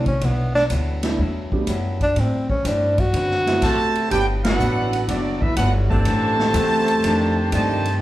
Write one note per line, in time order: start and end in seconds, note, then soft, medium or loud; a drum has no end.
0.00 0.20 C2 medium
0.06 0.26 C#4 medium
0.06 kick medium
0.06 ride soft
0.20 0.69 B1 medium
0.20 0.56 G2 soft
0.20 0.57 F#3 soft
0.20 0.57 B3 soft
0.20 0.58 E4 medium
0.20 ride medium
0.25 0.54 B3 medium
0.55 0.64 D4 loud
0.55 snare soft
0.70 1.17 D2 loud
0.70 1.05 G2 medium
0.70 1.05 F#3 medium
0.70 1.06 B3 medium
0.70 1.06 E4 medium
0.70 hi-hat pedal medium
0.70 ride medium
1.03 1.17 F#3 medium
1.03 1.17 A3 medium
1.03 1.17 B3 medium
1.03 1.18 D4 medium
1.03 1.18 E4 medium
1.03 snare medium
1.03 ride medium
1.18 1.66 E2 medium
1.18 1.54 G2 medium
1.18 1.54 F#3 medium
1.18 1.55 B3 medium
1.18 1.55 E4 medium
1.52 1.66 F#3 medium
1.52 1.66 A3 medium
1.52 1.66 B3 medium
1.52 1.66 D4 medium
1.52 1.66 G4 medium
1.52 kick medium
1.67 2.15 F#2 medium
1.67 2.02 G2 medium
1.67 2.03 F#3 medium
1.67 2.03 B3 medium
1.67 2.04 E4 medium
1.67 hi-hat pedal soft
1.67 ride medium
2.01 2.21 D4 loud
2.01 kick soft
2.01 ride soft
2.16 2.51 A2 medium
2.16 2.63 A2 medium
2.16 2.52 G3 medium
2.16 2.52 C4 soft
2.16 2.49 C4 medium
2.16 2.52 E4 medium
2.16 ride medium
2.50 2.68 C#4 loud
2.50 kick medium
2.64 3.12 G2 medium
2.64 2.99 A2 medium
2.64 3.00 G3 medium
2.64 3.00 C4 medium
2.64 3.01 D4 medium
2.64 3.01 E4 medium
2.64 hi-hat pedal medium
2.64 ride medium
2.98 4.04 F#4 loud
2.98 kick medium
2.98 ride medium
3.13 3.61 F#2 medium
3.13 3.48 D3 medium
3.13 3.49 C4 medium
3.13 3.49 F#4 medium
3.13 3.50 B4 medium
3.13 ride medium
3.31 snare soft
3.46 3.61 F#3 medium
3.46 3.61 A3 medium
3.46 3.61 B3 medium
3.46 3.61 C4 medium
3.46 3.61 E4 medium
3.46 snare soft
3.46 ride medium
3.62 4.08 C3 medium
3.62 4.08 F#3 medium
3.62 4.08 A3 medium
3.62 4.08 F#4 loud
3.62 4.08 C5 loud
3.62 4.08 E5 medium
3.62 4.08 A5 loud
3.62 kick medium
3.62 hi-hat pedal medium
3.62 crash medium
3.62 ride medium
3.95 ride medium
4.10 4.58 G1 medium
4.10 4.46 G2 soft
4.10 4.47 F#3 soft
4.10 4.25 B3 medium
4.10 4.47 B3 medium
4.10 4.25 D4 medium
4.10 4.26 D4 medium
4.10 4.25 G4 medium
4.10 4.26 A4 medium
4.10 4.26 B4 medium
4.10 4.26 G5 loud
4.10 ride medium
4.15 4.48 E4 medium
4.44 4.55 E3 medium
4.44 4.55 A3 medium
4.44 5.05 B3 loud
4.44 4.55 B3 medium
4.44 5.05 D4 medium
4.44 4.55 F#4 loud
4.44 5.05 F#4 medium
4.44 5.04 A4 loud
4.44 5.04 B4 medium
4.44 5.04 F#5 loud
4.44 snare loud
4.44 ride medium
4.59 5.07 A1 loud
4.59 4.94 G2 medium
4.59 4.95 F#3 medium
4.59 4.95 B3 medium
4.59 4.96 E4 medium
4.59 hi-hat pedal medium
4.93 ride medium
5.08 5.55 F#1 medium
5.08 5.43 G2 medium
5.08 5.43 F#3 soft
5.08 5.41 F#3 medium
5.08 5.42 B3 medium
5.08 5.44 B3 medium
5.08 5.41 B3 medium
5.08 5.42 D4 medium
5.08 5.44 E4 medium
5.08 5.42 F#4 medium
5.08 5.40 A4 medium
5.08 5.42 D5 medium
5.08 ride medium
5.42 5.57 F#3 medium
5.42 5.56 B3 medium
5.42 5.56 D4 medium
5.42 5.57 E4 medium
5.42 5.56 A4 medium
5.42 5.56 B4 medium
5.42 5.57 E5 medium
5.42 kick medium
5.56 6.04 G1 loud
5.56 5.92 G2 medium
5.56 5.92 F#3 medium
5.56 5.72 B3 medium
5.56 5.93 B3 medium
5.56 5.72 D4 medium
5.56 5.93 E4 medium
5.56 5.72 F#4 medium
5.56 5.72 A4 medium
5.56 5.72 B4 medium
5.56 5.72 F#5 loud
5.56 hi-hat pedal medium
5.56 ride medium
5.90 7.48 C3 loud
5.90 6.99 E3 loud
5.90 6.51 E3 loud
5.90 6.51 A3 medium
5.90 7.48 A3 loud
5.90 6.51 C4 medium
5.90 6.51 D4 loud
5.90 7.00 F#4 loud
5.90 7.48 C5 loud
5.90 7.00 E5 loud
5.90 7.48 A5 loud
5.90 kick medium
6.05 6.53 A1 medium
6.05 6.40 F#2 soft
6.05 6.41 E3 medium
6.05 6.42 A3 medium
6.05 6.42 C4 soft
6.05 ride medium
6.39 snare medium
6.53 7.01 E2 loud
6.53 6.89 F#2 medium
6.53 6.89 E3 medium
6.53 6.90 A3 medium
6.53 6.90 C4 medium
6.53 hi-hat pedal medium
6.53 ride medium
6.88 ride medium
7.03 7.38 F2 medium
7.03 7.50 F2 medium
7.03 7.38 D#3 medium
7.03 7.51 D#3 loud
7.03 7.51 A3 medium
7.03 7.39 A3 medium
7.03 7.51 D4 medium
7.03 7.39 D4 medium
7.03 7.51 G4 loud
7.03 ride medium
7.51 7.87 F2 medium
7.51 7.99 G2 loud
7.51 7.98 C3 medium
7.51 7.87 D#3 medium
7.51 7.98 D#3 medium
7.51 8.02 D#3 medium
7.51 7.87 A3 medium
7.51 8.01 A3 medium
7.51 7.98 A3 medium
7.51 7.87 D4 medium
7.51 8.01 D#4 medium
7.51 8.01 G4 medium
7.51 7.98 G4 medium
7.51 7.98 C5 medium
7.51 7.98 D#5 medium
7.51 7.98 A5 loud
7.51 hi-hat pedal medium
7.51 ride medium
7.85 ride medium